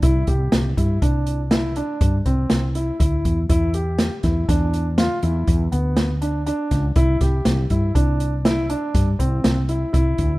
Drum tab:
HH |xxxxxxxxxxxxxx|xxxxxxxxxxxxxx|xxxxxxxxxxxxxx|
SD |--o---o---o---|--ooo-o---o--o|-oo---o-o-o---|
BD |oo-oo---oo--oo|o--oo---o----o|oo-oo---oo--oo|